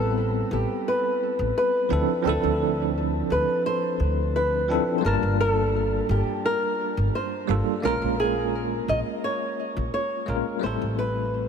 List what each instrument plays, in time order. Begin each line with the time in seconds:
Already playing: upright bass A1, tine electric piano G3 B3 C4 E4 A4, nylon-string guitar A4
0.51 upright bass A1, nylon-string guitar G4
0.88 nylon-string guitar B4
1.39 upright bass A1
1.58 nylon-string guitar B4
1.89 upright bass D2, tine electric piano F3 C4 D4 E4 A4
2.23 upright bass D2, tine electric piano F3 C4 D4
2.27 tine electric piano E4 A4, nylon-string guitar A4
2.43 upright bass D2
3.30 upright bass D2, nylon-string guitar B4
3.66 nylon-string guitar C5
4.00 upright bass D2
4.36 nylon-string guitar B4
4.68 tine electric piano F3 C4 D4 E4 A4
4.98 tine electric piano G3, nylon-string guitar C5
5.03 upright bass G1, tine electric piano A#3 D4 F4, nylon-string guitar A#4
5.08 tine electric piano A5
5.23 upright bass G1
5.41 nylon-string guitar A4
6.09 upright bass G1, nylon-string guitar G4
6.46 nylon-string guitar A#4
6.97 upright bass G1
7.15 nylon-string guitar C5
7.47 upright bass G1, tine electric piano G3 A#3 D4 F4 A4
7.80 upright bass A#1, tine electric piano G#3 A#3 C#4
7.85 tine electric piano F4 A#4, nylon-string guitar A#4
8.02 upright bass A#1
8.20 nylon-string guitar G#4
8.88 upright bass A#1, nylon-string guitar D#5
9.24 nylon-string guitar C#5
9.77 upright bass A#1
9.94 nylon-string guitar C#5
10.26 upright bass A#1, tine electric piano G#3 A#3 C#4 F4 A#4
10.59 upright bass A1, tine electric piano G3 A3 C4
10.64 tine electric piano E4 A4, nylon-string guitar C5
10.82 upright bass A1
10.99 nylon-string guitar B4